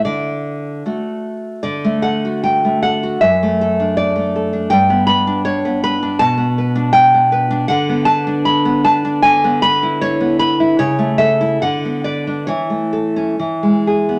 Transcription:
\new Staff \with { instrumentName = "Nylon-string guitar" } { \time 2/4 \key d \major \tempo 4 = 78 << { d''4. r8 | d''8 fis''8 g''8 fis''8 | e''4 d''4 | g''8 b''8 cis''8 b''8 |
a''4 g''4 | \key a \major fis''8 a''8 b''8 a''8 | gis''8 b''8 cis''8 b''8 | cis''8 e''8 fis''8 d''8 |
cis''4. r8 | } \\ { d4 <a fis'>4 | d16 a16 a'16 fis'8 a16 a'16 fis'16 | fis,16 a16 a'16 d'8 a16 a'16 d'16 | g,16 b16 b'16 d'8 b16 b'16 d'16 |
b,16 b16 b'16 d'8 b16 b'16 d'16 | d16 b16 b'16 d'8 b16 b'16 d'16 | d16 b16 b'16 e'8 b16 b'16 e'16 | cis16 a16 a'16 e'16 d16 b16 b'16 d'16 |
e16 a16 a'16 cis'16 e16 gis16 gis'16 b16 | } >> }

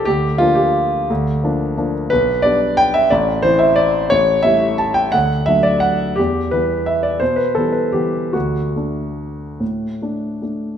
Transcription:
<<
  \new Staff \with { instrumentName = "Grand piano" } { \time 3/4 \key bes \mixolydian \tempo 4 = 174 g'4 f'8 g'4.~ | g'2~ g'8 r8 | \key d \mixolydian b'4 d''4 g''8 e''8 | d''4 c''8 e''8 d''4 |
cis''4 e''4 a''8 g''8 | fis''4 e''8 d''8 fis''4 | g'4 b'4 e''8 d''8 | c''8 b'8 a'8 b'8 g'4 |
fis'2.~ | fis'2 r4 | }
  \new Staff \with { instrumentName = "Grand piano" } { \clef bass \time 3/4 \key bes \mixolydian d,4 <f bes d'>2 | d,4 <f bes d'>4 <f bes d'>4 | \key d \mixolydian b,,4 <g b d'>2 | a,,4 <e c' e'>2 |
a,,4 <g a e'>2 | d,4 <fis a d'>2 | e,4 <e g b>2 | b,4 <e g b>4 <e g b>4 |
d,4 <a d'>2 | a,4 <a d'>4 <a d'>4 | }
>>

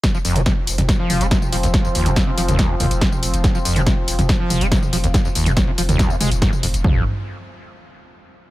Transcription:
<<
  \new Staff \with { instrumentName = "Synth drone" } { \clef bass \time 4/4 \key f \minor \tempo 4 = 141 <f c'>1~ | <f c'>1~ | <f c'>1~ | <f c'>1 |
r1 | }
  \new Staff \with { instrumentName = "Acid bass" } { \clef bass \time 4/4 \key f \minor f,16 f16 f,16 aes16 c16 r8 f,16 f,16 f8 aes16 c16 r16 f16 ees,16 | f,16 f,16 ees,16 g,16 ees,16 c16 f16 ees,8 f,16 ees,16 r16 c16 r8. | f,16 f16 f,16 aes16 c16 r8 f,16 f,16 f8 aes16 c16 r16 f16 ees,16 | f,16 f,16 ees,16 g,16 ees,16 c16 f16 ees,8 f,16 aes16 r16 aes,16 r16 f,16 r16 |
f,8 r2. r8 | }
  \new Staff \with { instrumentName = "Sub bass" } { \clef bass \time 4/4 \key f \minor r8 f,,16 f,,16 r8 f,,16 f,,16 r8 f,,16 f,,16 r8 f,,16 f,,16 | r8 f,,16 f,,16 r8 f,,16 f,,16 r8 f,,16 f,,16 r8 f,,16 f,,16 | r8 f,,16 f,,16 r8 f,,16 f,,16 r8 f,,16 f,,16 r8 f,,16 f,,16 | r8 f,,16 f,,16 r8 f,,16 f,,16 r8 f,,16 f,,16 r8 f,,16 f,,16 |
f,,8 r2. r8 | }
  \new DrumStaff \with { instrumentName = "Drums" } \drummode { \time 4/4 <hh bd sn tamb>16 tamb16 <hho tamb>16 <hh tamb toml>16 <hh bd sn tamb>8 <hho tamb>16 <hh tamb toml>16 <hh bd sn tamb>8 <hho tamb toml>16 <hh tamb>16 <hh bd sn tamb>16 <tamb toml>16 <hho tamb>16 <hh tamb>16 | <hh bd sn tamb>16 tamb16 <hho tamb>16 <hh tamb toml>16 <hh bd sn tamb>8 <hho tamb>16 <hh tamb toml>16 <hh bd sn tamb>8 <hho tamb toml>16 <hh tamb>16 <hh bd sn tamb>16 <tamb toml>16 <hho tamb>16 <hh tamb>16 | <hh bd sn tamb>16 tamb16 <hho tamb>16 <hh tamb toml>16 <hh bd sn tamb>8 <hho tamb>16 <hh tamb toml>16 <hh bd sn tamb>8 <hho tamb toml>16 <hh tamb>16 <hh bd sn tamb>16 <tamb toml>16 <hho tamb>16 <hh tamb>16 | <hh bd sn tamb>16 tamb16 <hho tamb>16 <hh tamb toml>16 <hh bd sn tamb>8 <hho tamb>16 <hh tamb toml>16 <hh bd sn tamb>16 tamb16 <hho tamb toml>16 <hh tamb>16 <hh bd sn tamb>16 <tamb toml>16 <hho tamb>16 <hh tamb>16 |
<bd tomfh>4 r4 r4 r4 | }
>>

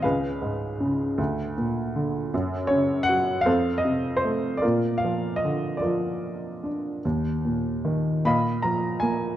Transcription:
<<
  \new Staff \with { instrumentName = "Upright piano" } { \time 6/8 \key bes \phrygian \tempo 4. = 52 << { f''2 r4 | r8 des''8 ges''8 f''8 ees''8 c''8 | d''8 f''8 ees''8 d''4 r8 | r4. ces'''8 bes''8 aes''8 | } \\ { <aes' ces''>2 r4 | r4. <a' c''>4. | <f' bes'>4. <f' bes'>4. | r4. <ees'' f''>4. | } >> }
  \new Staff \with { instrumentName = "Upright piano" } { \clef bass \time 6/8 \key bes \phrygian des,8 aes,8 des8 d,8 bes,8 d8 | ges,8 des8 ges8 f,8 c8 a8 | bes,8 f8 d8 f4 d'8 | ees,8 bes,8 ees8 bes,8 f8 bes8 | }
>>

